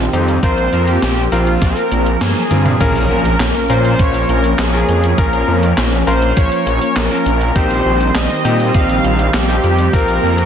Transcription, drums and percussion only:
0.13 closed hi-hat medium
0.28 closed hi-hat soft
0.43 kick loud
0.43 closed hi-hat medium
0.58 closed hi-hat soft
0.73 closed hi-hat soft
0.88 closed hi-hat soft
1.02 snare loud
1.02 closed hi-hat loud
1.17 closed hi-hat soft
1.32 closed hi-hat medium
1.47 closed hi-hat soft
1.62 kick loud
1.62 snare medium
1.62 closed hi-hat medium
1.77 closed hi-hat soft
1.92 closed hi-hat medium
2.06 closed hi-hat soft
2.21 snare loud
2.21 closed hi-hat medium
2.36 closed hi-hat soft
2.36 high tom soft
2.51 closed hi-hat medium
2.51 mid tom medium
2.66 closed hi-hat soft
2.66 mid tom medium
2.80 kick loud
2.80 closed hi-hat medium
2.80 crash loud
2.95 closed hi-hat soft
3.25 closed hi-hat soft
3.40 snare loud
3.40 clap loud
3.40 closed hi-hat loud
3.55 snare soft
3.55 closed hi-hat soft
3.70 closed hi-hat medium
3.85 closed hi-hat soft
3.99 kick loud
3.99 closed hi-hat loud
4.14 closed hi-hat soft
4.29 closed hi-hat medium
4.44 closed hi-hat soft
4.59 snare loud
4.59 clap loud
4.59 closed hi-hat loud
4.74 closed hi-hat soft
4.89 closed hi-hat medium
5.03 closed hi-hat soft
5.18 kick loud
5.18 closed hi-hat loud
5.33 closed hi-hat soft
5.63 closed hi-hat soft
5.78 snare loud
5.78 clap loud
5.78 closed hi-hat loud
5.92 snare soft
5.92 closed hi-hat soft
6.07 closed hi-hat medium
6.22 closed hi-hat soft
6.37 kick loud
6.37 closed hi-hat loud
6.52 closed hi-hat soft
6.67 closed hi-hat medium
6.82 closed hi-hat soft
6.96 snare loud
6.96 clap loud
6.96 closed hi-hat loud
7.11 closed hi-hat soft
7.26 closed hi-hat medium
7.41 closed hi-hat soft
7.56 kick loud
7.56 closed hi-hat medium
7.71 closed hi-hat soft
8.00 closed hi-hat soft
8.15 snare loud
8.15 clap medium
8.15 closed hi-hat medium
8.30 snare soft
8.30 closed hi-hat soft
8.45 closed hi-hat medium
8.60 closed hi-hat soft
8.74 kick loud
8.74 closed hi-hat medium
8.89 closed hi-hat soft
9.04 closed hi-hat medium
9.19 closed hi-hat soft
9.34 snare loud
9.34 clap medium
9.34 closed hi-hat loud
9.49 closed hi-hat soft
9.64 closed hi-hat medium
9.79 closed hi-hat soft
9.93 kick loud
9.93 closed hi-hat medium
10.08 closed hi-hat soft
10.38 closed hi-hat soft

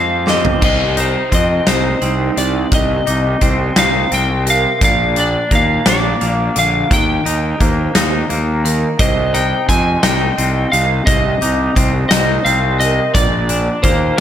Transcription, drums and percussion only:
0.27 snare medium
0.45 floor tom medium
0.62 kick medium
0.62 crash medium
0.97 closed hi-hat medium
1.32 kick medium
1.32 closed hi-hat medium
1.67 snare medium
1.67 closed hi-hat medium
2.01 closed hi-hat soft
2.37 closed hi-hat medium
2.71 kick medium
2.71 closed hi-hat medium
3.07 closed hi-hat medium
3.41 kick medium
3.41 closed hi-hat medium
3.76 snare medium
3.76 closed hi-hat medium
4.12 closed hi-hat medium
4.47 closed hi-hat medium
4.81 kick medium
4.81 closed hi-hat medium
5.16 closed hi-hat medium
5.51 kick medium
5.51 closed hi-hat medium
5.86 snare loud
5.86 closed hi-hat medium
6.21 closed hi-hat soft
6.56 closed hi-hat medium
6.91 kick loud
6.91 closed hi-hat medium
7.26 closed hi-hat medium
7.60 kick medium
7.60 closed hi-hat medium
7.95 snare medium
7.95 closed hi-hat medium
8.30 closed hi-hat soft
8.65 closed hi-hat medium
8.99 kick loud
8.99 closed hi-hat medium
9.34 closed hi-hat medium
9.69 kick medium
9.69 closed hi-hat medium
10.03 snare medium
10.03 closed hi-hat medium
10.38 closed hi-hat medium
10.73 closed hi-hat medium
11.07 kick loud
11.07 closed hi-hat medium
11.42 closed hi-hat medium
11.76 kick medium
11.76 closed hi-hat medium
12.11 snare loud
12.11 closed hi-hat medium
12.46 closed hi-hat soft
12.80 closed hi-hat medium
13.15 kick loud
13.15 closed hi-hat medium
13.49 closed hi-hat medium
13.83 kick medium
13.83 closed hi-hat medium

